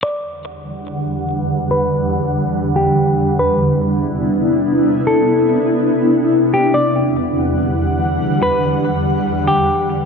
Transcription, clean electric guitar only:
X:1
M:4/4
L:1/8
Q:1/4=143
K:Em
V:1 name="Clean electric guitar"
d8 | B4- B G3 | B8 | A6- A G |
d8 | B4- B G3 |]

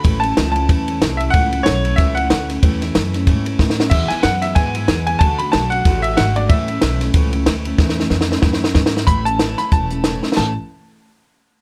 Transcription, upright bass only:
X:1
M:4/4
L:1/8
Q:"Swing" 1/4=186
K:A
V:1 name="Upright bass" clef=bass
A,,,2 C,,2 E,,2 =C,,2 | C,,2 B,,,2 C,,2 D,,2 | E,,2 F,,2 G,,2 A,,2 | E,, z F,,2 G,,2 E,,2 |
D,,2 B,,,2 A,,,2 G,,,2 | A,,,2 B,,,2 C,,2 D,,2 | E,,2 =F,,2 ^F,,2 G,,2 | A,,,4 E,,,4 |
A,,, z6 z |]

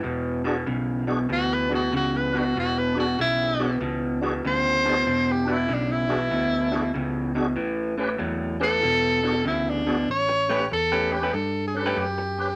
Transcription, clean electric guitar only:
X:1
M:4/4
L:1/16
Q:"Swing" 1/4=96
K:Amix
V:1 name="Clean electric guitar" clef=bass
[E,,B,,]2 [E,,B,,]2 [E,,C,]2 [E,,B,,]2 [E,,B,,]2 [E,,B,,]2 [E,,C,]2 [E,,B,,]2 | [E,,B,,]2 [E,,B,,]2 [E,,C,]2 [E,,B,,]2 [E,,B,,]2 [E,,B,,]2 [E,,C,]2 [E,,B,,]2 | [E,,B,,]2 [E,,B,,]2 [E,,C,]2 [E,,B,,]2 [E,,B,,]2 [E,,B,,]2 [E,,C,]2 [E,,B,,]2 | [A,,E,]2 [A,,E,]2 [A,,F,]2 [A,,E,]2 [E,,B,,]2 [E,,B,,]2 [E,,C,]2 [E,,B,,]2 |
z2 [A,CGB] z2 [A,CGB] z [A,CGB] z3 [A,CGB] z4 |]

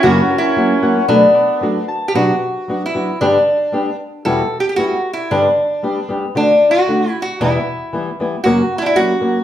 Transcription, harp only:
X:1
M:2/4
L:1/8
Q:1/4=114
K:Bm
V:1 name="Harp"
F ^A z f | B d z a | z4 | z4 |
z4 | z4 | z4 | z4 |
z4 |]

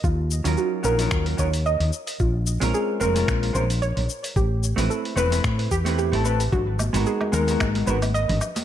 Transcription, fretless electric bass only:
X:1
M:4/4
L:1/16
Q:"Swing 16ths" 1/4=111
K:D#m
V:1 name="Fretless electric bass" clef=bass
D,,3 D,, z2 A,,,2 D,,2 D,,3 D,, z2 | A,,,3 A,,, z2 E,,,2 A,,,2 A,,,3 A,,, z2 | =A,,,3 A,,, z2 =E,,,2 =A,,2 =E,,3 A,,,3 | G,,,3 G,,, z2 D,,2 G,,,2 G,,,3 G,,, z2 |]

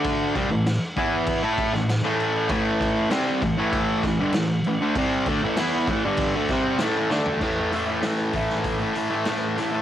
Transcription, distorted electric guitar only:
X:1
M:4/4
L:1/16
Q:1/4=98
K:Am
V:1 name="Distorted electric guitar" clef=bass
[D,A,D]2 [C,G,] [A,,E,]2 z [E,B,E]3 [A,EA]2 [A,,E,]2 [A,,E,A,]3 | [A,,E,A,]4 [C,G,C]2 [A,,E,] [A,,E,A,]3 [A,,E,] [G,,D,] [A,,E,]2 [A,,E,] [D,A,] | [C,G,C]2 [D,A,] [A,,E,] [E,B,E]2 [A,,E,] [G,,D,G,]2 [D,A,] [C,G,C]2 [A,,E,A,]2 [D,A,D]2 | [A,,E,A,] [E,A,] [A,,E,A,] [E,A,] [A,,E,A,]2 [A,,E,A,]3 [E,A,] [A,,E,A,] [E,A,] [A,,E,A,]2 [A,,E,A,] [E,A,] |]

